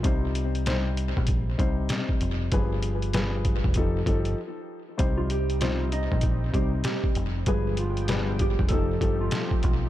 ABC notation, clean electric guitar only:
X:1
M:4/4
L:1/16
Q:"Swing 16ths" 1/4=97
K:Cm
V:1 name="Clean electric guitar"
z16 | z16 | z [F,F] [G,G]2 [F,F]2 [Ee]2 z2 [G,G] z [G,G]2 z2 | [A,A]2 [F,F]2 z2 [G,G] z [=A,=A]3 [F,F]4- [F,F] |]